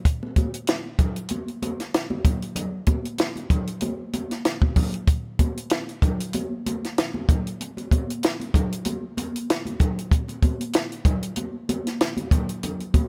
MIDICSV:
0, 0, Header, 1, 2, 480
1, 0, Start_track
1, 0, Tempo, 628931
1, 40, Time_signature, 4, 2, 24, 8
1, 9985, End_track
2, 0, Start_track
2, 0, Title_t, "Drums"
2, 39, Note_on_c, 9, 36, 93
2, 40, Note_on_c, 9, 42, 80
2, 116, Note_off_c, 9, 36, 0
2, 116, Note_off_c, 9, 42, 0
2, 174, Note_on_c, 9, 62, 30
2, 250, Note_off_c, 9, 62, 0
2, 275, Note_on_c, 9, 42, 60
2, 277, Note_on_c, 9, 36, 74
2, 289, Note_on_c, 9, 63, 64
2, 351, Note_off_c, 9, 42, 0
2, 353, Note_off_c, 9, 36, 0
2, 366, Note_off_c, 9, 63, 0
2, 410, Note_on_c, 9, 42, 53
2, 487, Note_off_c, 9, 42, 0
2, 512, Note_on_c, 9, 42, 94
2, 525, Note_on_c, 9, 38, 118
2, 529, Note_on_c, 9, 62, 30
2, 588, Note_off_c, 9, 42, 0
2, 601, Note_off_c, 9, 38, 0
2, 606, Note_off_c, 9, 62, 0
2, 752, Note_on_c, 9, 42, 75
2, 754, Note_on_c, 9, 36, 92
2, 763, Note_on_c, 9, 64, 74
2, 829, Note_off_c, 9, 42, 0
2, 830, Note_off_c, 9, 36, 0
2, 839, Note_off_c, 9, 64, 0
2, 885, Note_on_c, 9, 42, 55
2, 961, Note_off_c, 9, 42, 0
2, 981, Note_on_c, 9, 42, 90
2, 1000, Note_on_c, 9, 62, 26
2, 1000, Note_on_c, 9, 63, 61
2, 1057, Note_off_c, 9, 42, 0
2, 1076, Note_off_c, 9, 62, 0
2, 1076, Note_off_c, 9, 63, 0
2, 1131, Note_on_c, 9, 42, 31
2, 1207, Note_off_c, 9, 42, 0
2, 1239, Note_on_c, 9, 42, 72
2, 1239, Note_on_c, 9, 63, 71
2, 1315, Note_off_c, 9, 42, 0
2, 1315, Note_off_c, 9, 63, 0
2, 1372, Note_on_c, 9, 42, 48
2, 1376, Note_on_c, 9, 38, 34
2, 1448, Note_off_c, 9, 42, 0
2, 1452, Note_off_c, 9, 38, 0
2, 1481, Note_on_c, 9, 42, 88
2, 1485, Note_on_c, 9, 38, 112
2, 1558, Note_off_c, 9, 42, 0
2, 1561, Note_off_c, 9, 38, 0
2, 1605, Note_on_c, 9, 62, 25
2, 1605, Note_on_c, 9, 63, 57
2, 1681, Note_off_c, 9, 62, 0
2, 1681, Note_off_c, 9, 63, 0
2, 1714, Note_on_c, 9, 36, 92
2, 1715, Note_on_c, 9, 42, 68
2, 1718, Note_on_c, 9, 64, 74
2, 1791, Note_off_c, 9, 36, 0
2, 1791, Note_off_c, 9, 42, 0
2, 1794, Note_off_c, 9, 64, 0
2, 1848, Note_on_c, 9, 42, 45
2, 1924, Note_off_c, 9, 42, 0
2, 1951, Note_on_c, 9, 62, 28
2, 1951, Note_on_c, 9, 64, 66
2, 1952, Note_on_c, 9, 42, 81
2, 2027, Note_off_c, 9, 62, 0
2, 2027, Note_off_c, 9, 64, 0
2, 2028, Note_off_c, 9, 42, 0
2, 2186, Note_on_c, 9, 42, 62
2, 2192, Note_on_c, 9, 36, 76
2, 2196, Note_on_c, 9, 63, 67
2, 2262, Note_off_c, 9, 42, 0
2, 2268, Note_off_c, 9, 36, 0
2, 2272, Note_off_c, 9, 63, 0
2, 2329, Note_on_c, 9, 42, 50
2, 2406, Note_off_c, 9, 42, 0
2, 2428, Note_on_c, 9, 42, 92
2, 2429, Note_on_c, 9, 62, 28
2, 2441, Note_on_c, 9, 38, 115
2, 2505, Note_off_c, 9, 42, 0
2, 2505, Note_off_c, 9, 62, 0
2, 2517, Note_off_c, 9, 38, 0
2, 2562, Note_on_c, 9, 62, 33
2, 2569, Note_on_c, 9, 42, 32
2, 2639, Note_off_c, 9, 62, 0
2, 2645, Note_off_c, 9, 42, 0
2, 2672, Note_on_c, 9, 36, 85
2, 2672, Note_on_c, 9, 64, 75
2, 2673, Note_on_c, 9, 42, 77
2, 2748, Note_off_c, 9, 36, 0
2, 2749, Note_off_c, 9, 42, 0
2, 2749, Note_off_c, 9, 64, 0
2, 2804, Note_on_c, 9, 42, 55
2, 2880, Note_off_c, 9, 42, 0
2, 2904, Note_on_c, 9, 42, 93
2, 2916, Note_on_c, 9, 62, 27
2, 2916, Note_on_c, 9, 63, 60
2, 2981, Note_off_c, 9, 42, 0
2, 2992, Note_off_c, 9, 62, 0
2, 2992, Note_off_c, 9, 63, 0
2, 3154, Note_on_c, 9, 42, 74
2, 3157, Note_on_c, 9, 63, 66
2, 3230, Note_off_c, 9, 42, 0
2, 3234, Note_off_c, 9, 63, 0
2, 3289, Note_on_c, 9, 42, 49
2, 3293, Note_on_c, 9, 38, 32
2, 3365, Note_off_c, 9, 42, 0
2, 3369, Note_off_c, 9, 38, 0
2, 3395, Note_on_c, 9, 42, 88
2, 3399, Note_on_c, 9, 38, 102
2, 3471, Note_off_c, 9, 42, 0
2, 3475, Note_off_c, 9, 38, 0
2, 3523, Note_on_c, 9, 36, 94
2, 3531, Note_on_c, 9, 63, 55
2, 3600, Note_off_c, 9, 36, 0
2, 3608, Note_off_c, 9, 63, 0
2, 3632, Note_on_c, 9, 46, 63
2, 3634, Note_on_c, 9, 36, 86
2, 3638, Note_on_c, 9, 64, 75
2, 3708, Note_off_c, 9, 46, 0
2, 3710, Note_off_c, 9, 36, 0
2, 3715, Note_off_c, 9, 64, 0
2, 3768, Note_on_c, 9, 42, 46
2, 3844, Note_off_c, 9, 42, 0
2, 3872, Note_on_c, 9, 42, 78
2, 3873, Note_on_c, 9, 36, 93
2, 3948, Note_off_c, 9, 42, 0
2, 3950, Note_off_c, 9, 36, 0
2, 4113, Note_on_c, 9, 42, 60
2, 4115, Note_on_c, 9, 36, 73
2, 4122, Note_on_c, 9, 63, 64
2, 4189, Note_off_c, 9, 42, 0
2, 4192, Note_off_c, 9, 36, 0
2, 4198, Note_off_c, 9, 63, 0
2, 4254, Note_on_c, 9, 42, 51
2, 4330, Note_off_c, 9, 42, 0
2, 4349, Note_on_c, 9, 42, 90
2, 4358, Note_on_c, 9, 62, 28
2, 4361, Note_on_c, 9, 38, 118
2, 4425, Note_off_c, 9, 42, 0
2, 4435, Note_off_c, 9, 62, 0
2, 4438, Note_off_c, 9, 38, 0
2, 4493, Note_on_c, 9, 42, 35
2, 4569, Note_off_c, 9, 42, 0
2, 4596, Note_on_c, 9, 36, 90
2, 4598, Note_on_c, 9, 64, 80
2, 4599, Note_on_c, 9, 42, 81
2, 4672, Note_off_c, 9, 36, 0
2, 4674, Note_off_c, 9, 64, 0
2, 4675, Note_off_c, 9, 42, 0
2, 4733, Note_on_c, 9, 42, 55
2, 4810, Note_off_c, 9, 42, 0
2, 4831, Note_on_c, 9, 42, 83
2, 4842, Note_on_c, 9, 62, 28
2, 4842, Note_on_c, 9, 63, 61
2, 4908, Note_off_c, 9, 42, 0
2, 4919, Note_off_c, 9, 62, 0
2, 4919, Note_off_c, 9, 63, 0
2, 5085, Note_on_c, 9, 42, 79
2, 5086, Note_on_c, 9, 63, 72
2, 5161, Note_off_c, 9, 42, 0
2, 5162, Note_off_c, 9, 63, 0
2, 5224, Note_on_c, 9, 42, 49
2, 5227, Note_on_c, 9, 38, 31
2, 5300, Note_off_c, 9, 42, 0
2, 5304, Note_off_c, 9, 38, 0
2, 5326, Note_on_c, 9, 42, 92
2, 5330, Note_on_c, 9, 38, 112
2, 5403, Note_off_c, 9, 42, 0
2, 5407, Note_off_c, 9, 38, 0
2, 5451, Note_on_c, 9, 62, 26
2, 5451, Note_on_c, 9, 63, 57
2, 5527, Note_off_c, 9, 62, 0
2, 5527, Note_off_c, 9, 63, 0
2, 5562, Note_on_c, 9, 36, 105
2, 5565, Note_on_c, 9, 42, 62
2, 5567, Note_on_c, 9, 64, 71
2, 5638, Note_off_c, 9, 36, 0
2, 5641, Note_off_c, 9, 42, 0
2, 5643, Note_off_c, 9, 64, 0
2, 5699, Note_on_c, 9, 42, 46
2, 5775, Note_off_c, 9, 42, 0
2, 5805, Note_on_c, 9, 42, 78
2, 5806, Note_on_c, 9, 62, 29
2, 5881, Note_off_c, 9, 42, 0
2, 5882, Note_off_c, 9, 62, 0
2, 5931, Note_on_c, 9, 62, 31
2, 5937, Note_on_c, 9, 42, 35
2, 6008, Note_off_c, 9, 62, 0
2, 6014, Note_off_c, 9, 42, 0
2, 6040, Note_on_c, 9, 36, 79
2, 6045, Note_on_c, 9, 42, 57
2, 6048, Note_on_c, 9, 63, 65
2, 6117, Note_off_c, 9, 36, 0
2, 6122, Note_off_c, 9, 42, 0
2, 6124, Note_off_c, 9, 63, 0
2, 6183, Note_on_c, 9, 42, 51
2, 6259, Note_off_c, 9, 42, 0
2, 6280, Note_on_c, 9, 42, 94
2, 6293, Note_on_c, 9, 38, 115
2, 6357, Note_off_c, 9, 42, 0
2, 6370, Note_off_c, 9, 38, 0
2, 6410, Note_on_c, 9, 62, 33
2, 6420, Note_on_c, 9, 42, 36
2, 6486, Note_off_c, 9, 62, 0
2, 6496, Note_off_c, 9, 42, 0
2, 6518, Note_on_c, 9, 64, 81
2, 6519, Note_on_c, 9, 36, 91
2, 6526, Note_on_c, 9, 42, 79
2, 6595, Note_off_c, 9, 36, 0
2, 6595, Note_off_c, 9, 64, 0
2, 6602, Note_off_c, 9, 42, 0
2, 6659, Note_on_c, 9, 42, 56
2, 6735, Note_off_c, 9, 42, 0
2, 6753, Note_on_c, 9, 42, 94
2, 6760, Note_on_c, 9, 62, 26
2, 6760, Note_on_c, 9, 63, 63
2, 6829, Note_off_c, 9, 42, 0
2, 6837, Note_off_c, 9, 62, 0
2, 6837, Note_off_c, 9, 63, 0
2, 7001, Note_on_c, 9, 63, 70
2, 7004, Note_on_c, 9, 42, 76
2, 7078, Note_off_c, 9, 63, 0
2, 7080, Note_off_c, 9, 42, 0
2, 7141, Note_on_c, 9, 42, 51
2, 7217, Note_off_c, 9, 42, 0
2, 7249, Note_on_c, 9, 42, 94
2, 7253, Note_on_c, 9, 38, 112
2, 7325, Note_off_c, 9, 42, 0
2, 7329, Note_off_c, 9, 38, 0
2, 7368, Note_on_c, 9, 63, 53
2, 7376, Note_on_c, 9, 42, 34
2, 7444, Note_off_c, 9, 63, 0
2, 7452, Note_off_c, 9, 42, 0
2, 7477, Note_on_c, 9, 64, 72
2, 7480, Note_on_c, 9, 36, 89
2, 7485, Note_on_c, 9, 42, 65
2, 7553, Note_off_c, 9, 64, 0
2, 7556, Note_off_c, 9, 36, 0
2, 7561, Note_off_c, 9, 42, 0
2, 7621, Note_on_c, 9, 42, 49
2, 7697, Note_off_c, 9, 42, 0
2, 7720, Note_on_c, 9, 36, 98
2, 7722, Note_on_c, 9, 62, 28
2, 7726, Note_on_c, 9, 42, 81
2, 7796, Note_off_c, 9, 36, 0
2, 7798, Note_off_c, 9, 62, 0
2, 7802, Note_off_c, 9, 42, 0
2, 7847, Note_on_c, 9, 62, 33
2, 7853, Note_on_c, 9, 42, 35
2, 7924, Note_off_c, 9, 62, 0
2, 7929, Note_off_c, 9, 42, 0
2, 7956, Note_on_c, 9, 36, 78
2, 7956, Note_on_c, 9, 42, 58
2, 7968, Note_on_c, 9, 63, 64
2, 8032, Note_off_c, 9, 42, 0
2, 8033, Note_off_c, 9, 36, 0
2, 8044, Note_off_c, 9, 63, 0
2, 8095, Note_on_c, 9, 42, 54
2, 8171, Note_off_c, 9, 42, 0
2, 8192, Note_on_c, 9, 42, 95
2, 8204, Note_on_c, 9, 38, 119
2, 8268, Note_off_c, 9, 42, 0
2, 8281, Note_off_c, 9, 38, 0
2, 8333, Note_on_c, 9, 42, 34
2, 8409, Note_off_c, 9, 42, 0
2, 8433, Note_on_c, 9, 36, 90
2, 8434, Note_on_c, 9, 42, 78
2, 8436, Note_on_c, 9, 64, 76
2, 8510, Note_off_c, 9, 36, 0
2, 8510, Note_off_c, 9, 42, 0
2, 8512, Note_off_c, 9, 64, 0
2, 8567, Note_on_c, 9, 42, 58
2, 8644, Note_off_c, 9, 42, 0
2, 8668, Note_on_c, 9, 42, 82
2, 8677, Note_on_c, 9, 63, 59
2, 8745, Note_off_c, 9, 42, 0
2, 8754, Note_off_c, 9, 63, 0
2, 8921, Note_on_c, 9, 42, 78
2, 8922, Note_on_c, 9, 63, 69
2, 8997, Note_off_c, 9, 42, 0
2, 8999, Note_off_c, 9, 63, 0
2, 9057, Note_on_c, 9, 42, 52
2, 9060, Note_on_c, 9, 38, 31
2, 9133, Note_off_c, 9, 42, 0
2, 9137, Note_off_c, 9, 38, 0
2, 9163, Note_on_c, 9, 42, 94
2, 9166, Note_on_c, 9, 38, 106
2, 9239, Note_off_c, 9, 42, 0
2, 9243, Note_off_c, 9, 38, 0
2, 9286, Note_on_c, 9, 63, 55
2, 9291, Note_on_c, 9, 42, 36
2, 9362, Note_off_c, 9, 63, 0
2, 9367, Note_off_c, 9, 42, 0
2, 9397, Note_on_c, 9, 36, 102
2, 9400, Note_on_c, 9, 42, 67
2, 9403, Note_on_c, 9, 64, 76
2, 9473, Note_off_c, 9, 36, 0
2, 9477, Note_off_c, 9, 42, 0
2, 9479, Note_off_c, 9, 64, 0
2, 9531, Note_on_c, 9, 42, 46
2, 9608, Note_off_c, 9, 42, 0
2, 9639, Note_on_c, 9, 42, 75
2, 9644, Note_on_c, 9, 62, 29
2, 9644, Note_on_c, 9, 64, 65
2, 9715, Note_off_c, 9, 42, 0
2, 9721, Note_off_c, 9, 62, 0
2, 9721, Note_off_c, 9, 64, 0
2, 9770, Note_on_c, 9, 42, 34
2, 9847, Note_off_c, 9, 42, 0
2, 9876, Note_on_c, 9, 42, 58
2, 9876, Note_on_c, 9, 63, 67
2, 9877, Note_on_c, 9, 36, 77
2, 9952, Note_off_c, 9, 42, 0
2, 9953, Note_off_c, 9, 36, 0
2, 9953, Note_off_c, 9, 63, 0
2, 9985, End_track
0, 0, End_of_file